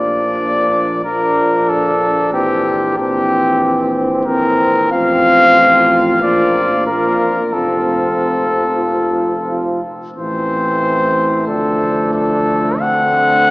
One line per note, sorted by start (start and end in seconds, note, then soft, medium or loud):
0.00 4.89 A#1 soft
0.00 1.01 F3 soft
0.00 1.00 A#3 soft
0.00 1.01 D4 soft
0.00 1.02 D5 medium
1.04 2.31 F3 soft
1.04 2.31 A#3 soft
1.04 2.35 D4 soft
1.04 1.71 A#4 soft
1.69 2.32 A4 medium
2.33 2.96 E3 soft
2.33 2.96 C4 soft
2.33 2.98 C4 soft
2.33 2.96 G4 medium
2.97 4.24 E3 soft
2.97 4.24 C4 soft
2.97 3.92 G4 medium
4.25 4.91 E3 soft
4.25 4.91 C4 soft
4.25 4.88 A#4 medium
4.92 6.24 A1 soft
4.92 6.18 F3 soft
4.92 6.24 C4 soft
4.92 6.18 F4 soft
4.92 6.19 F5 medium
6.21 7.37 A#1 soft
6.21 6.86 F3 soft
6.21 6.70 A#3 soft
6.21 6.70 F4 soft
6.21 6.86 D5 medium
6.87 7.37 F3 soft
6.87 7.54 A#3 soft
6.87 7.52 F4 soft
6.87 7.54 A#4 medium
7.53 9.81 F1 soft
7.53 9.81 F3 soft
7.53 9.85 C4 soft
7.53 9.82 F4 soft
7.53 9.84 A4 soft
10.16 11.50 A1 soft
10.16 11.49 E3 soft
10.16 13.51 A3 soft
10.16 11.44 C4 soft
10.16 11.44 C5 medium
11.47 13.51 D2 soft
11.47 12.78 F3 soft
11.47 12.77 D4 soft
11.47 12.11 A4 soft
12.13 12.81 A4 medium
12.79 13.51 D3 soft
12.79 13.51 C4 soft
12.79 13.51 F#5 medium